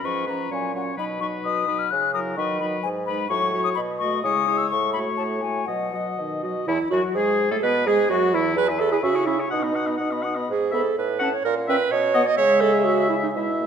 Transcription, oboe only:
0.04 0.26 B4 soft
0.26 0.50 B4 soft
0.51 0.73 C#5 soft
0.74 0.96 C#5 soft
0.97 1.20 B4 soft
1.21 1.67 B4 soft
1.67 1.90 B4 soft
2.14 2.37 A#4 soft
2.38 2.61 B4 soft
2.62 2.84 B4 soft
3.07 3.29 B4 soft
3.30 3.53 C#5 soft
3.54 3.77 C#5 soft
4.00 4.23 D#5 soft
4.25 4.47 C#5 soft
4.47 4.70 C#5 soft
4.94 5.42 C#5 soft
5.43 5.67 C#5 soft
5.67 5.92 D#5 soft
5.94 6.43 D#5 soft
6.44 6.67 D#5 soft
6.68 6.78 E4 medium
6.93 7.03 F#4 medium
7.16 7.50 G#4 medium
7.51 7.57 A4 medium
7.64 7.89 B4 medium
7.87 8.10 G#4 medium
8.10 8.36 F#4 medium
8.35 8.57 E4 medium
8.57 8.70 E5 medium
8.69 8.81 B4 medium
8.80 8.94 E5 medium
8.93 9.03 B4 medium
9.03 9.16 E5 medium
9.15 9.28 C#5 medium
9.26 9.41 E5 medium
9.39 9.50 C#5 medium
9.50 9.64 F#5 medium
9.63 9.77 D#5 soft
9.75 9.88 F#5 soft
9.86 9.96 D#5 soft
9.97 10.12 F#5 soft
10.11 10.23 D#5 soft
10.22 10.36 F#5 soft
10.35 10.49 D#5 soft
10.71 10.81 E5 soft
11.19 11.28 F#5 medium
11.68 11.76 E5 medium
12.14 12.22 D#5 medium
12.37 13.31 E5 medium
13.36 13.67 E5 medium

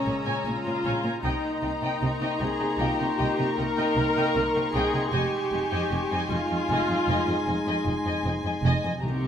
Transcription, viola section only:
0.00 0.46 C#4 medium
0.46 1.24 F4 medium
1.24 2.38 D#4 medium
2.41 2.80 G#4 medium
2.80 3.57 G4 medium
3.57 4.74 A#4 medium
4.74 5.12 G#4 medium
5.14 6.30 G4 medium
6.31 7.86 F4 medium
9.03 9.28 G4 loud

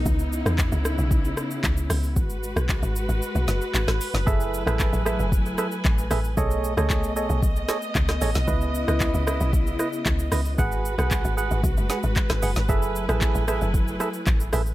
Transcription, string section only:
0.00 2.12 B3 medium
0.00 2.12 D#4 loud
0.06 2.14 C#3 medium
0.06 2.14 E4 medium
2.17 4.25 G#3 medium
2.17 4.25 F#4 medium
2.17 6.34 B4 medium
4.27 6.35 F#3 medium
4.27 6.35 A3 medium
4.27 6.35 E4 medium
4.27 6.35 G#5 medium
6.37 8.46 A3 medium
6.37 10.54 B3 medium
6.37 10.54 D#5 medium
8.48 10.56 C#3 medium
8.48 10.56 E4 medium
10.58 12.67 G#3 medium
10.58 12.67 F#4 medium
10.58 14.74 B4 medium
12.69 14.74 F#3 medium
12.69 14.74 A3 medium
12.69 14.74 E4 medium
12.69 14.74 G#5 medium

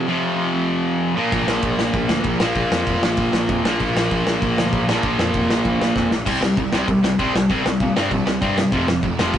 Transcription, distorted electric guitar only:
0.07 1.15 F2 loud
0.07 1.16 C3 loud
0.07 1.17 F3 loud
1.16 2.39 A#2 loud
1.16 2.40 F3 medium
1.16 2.41 A#3 loud
2.40 3.64 A#2 loud
2.40 3.66 F3 loud
2.40 3.66 A#3 loud
3.64 4.87 A#2 medium
3.64 4.88 F3 medium
3.64 4.88 A#3 loud
4.88 6.10 A#2 loud
4.88 6.11 F3 loud
4.88 6.12 A#3 loud
6.26 6.40 C3 medium
6.26 6.40 G3 loud
6.26 6.41 C4 loud
6.41 6.55 C3 medium
6.41 6.55 G3 medium
6.58 6.71 C3 medium
6.58 6.71 G3 medium
6.73 6.87 C3 medium
6.73 6.87 G3 medium
6.73 6.88 C4 medium
6.88 7.02 C3 medium
6.88 7.02 G3 medium
7.03 7.17 C3 medium
7.03 7.17 G3 medium
7.19 7.33 C3 medium
7.19 7.33 G3 medium
7.19 7.33 C4 medium
7.35 7.48 C3 medium
7.35 7.49 G3 medium
7.49 7.63 C3 medium
7.49 7.63 G3 loud
7.49 7.64 C4 medium
7.64 7.79 C3 medium
7.64 7.79 G3 medium
7.82 7.95 C3 medium
7.82 7.95 G3 medium
7.96 8.10 C3 loud
7.96 8.10 G3 medium
7.96 8.11 C4 loud
8.11 8.25 C3 medium
8.11 8.24 G3 loud
8.26 8.40 C3 medium
8.26 8.40 G3 medium
8.41 8.56 C3 medium
8.41 8.56 G3 medium
8.41 8.57 C4 loud
8.57 8.71 C3 medium
8.57 8.71 G3 medium
8.72 8.87 F2 loud
8.72 8.87 C3 loud
8.72 8.87 F3 loud
8.88 9.02 F2 medium
8.88 9.02 C3 medium
9.03 9.17 F2 medium
9.03 9.18 C3 medium
9.19 9.33 F2 medium
9.19 9.34 C3 medium
9.19 9.34 F3 loud
9.34 9.38 F2 medium
9.34 9.38 C3 medium

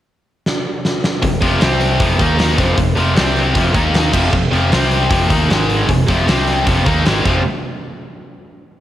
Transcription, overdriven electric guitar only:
1.22 1.38 F2 medium
1.22 1.38 C3 medium
1.42 1.60 F2 medium
1.42 1.60 C3 loud
1.42 1.61 F3 loud
1.61 1.99 C3 medium
1.61 2.00 G3 loud
1.61 2.00 C4 medium
2.00 2.18 F2 loud
2.00 2.19 C3 loud
2.00 2.19 F3 loud
2.20 2.57 D#3 medium
2.20 2.58 A#3 medium
2.20 2.58 D#4 medium
2.57 2.76 F2 medium
2.57 2.76 C3 loud
2.57 2.77 F3 medium
2.77 2.92 F2 medium
2.77 2.93 C3 medium
2.95 3.15 F2 loud
2.95 3.14 C3 medium
2.95 3.16 F3 loud
3.15 3.53 C3 medium
3.15 3.54 G3 medium
3.15 3.54 C4 medium
3.54 3.73 F2 loud
3.54 3.74 C3 loud
3.54 3.74 F3 loud
3.74 4.12 D#3 medium
3.74 4.13 A#3 medium
3.74 4.13 D#4 medium
4.12 4.31 F2 loud
4.12 4.32 C3 loud
4.12 4.32 F3 loud
4.32 4.48 F2 medium
4.32 4.48 C3 medium
4.51 4.71 F2 loud
4.51 4.71 C3 loud
4.51 4.71 F3 loud
4.72 5.10 C3 medium
4.72 5.10 G3 loud
4.72 5.11 C4 loud
5.10 5.29 F2 loud
5.10 5.30 C3 loud
5.10 5.30 F3 loud
5.30 5.49 D#3 medium
5.30 5.49 A#3 medium
5.30 5.49 D#4 loud
5.49 5.88 G#2 medium
5.49 5.88 D#3 loud
5.49 5.88 G#3 loud
5.89 6.04 F2 medium
5.89 6.04 C3 medium
6.08 6.27 F2 loud
6.08 6.26 C3 loud
6.08 6.27 F3 loud
6.27 6.65 C3 medium
6.27 6.66 G3 medium
6.27 6.66 C4 medium
6.66 6.85 F2 medium
6.66 6.85 C3 loud
6.66 6.85 F3 loud
6.85 7.04 D#3 medium
6.85 7.05 A#3 medium
6.85 7.05 D#4 loud
7.05 7.24 G#2 medium
7.05 7.25 D#3 medium
7.05 7.25 G#3 loud
7.24 7.40 F2 medium
7.24 7.41 C3 loud
7.24 7.41 F3 loud

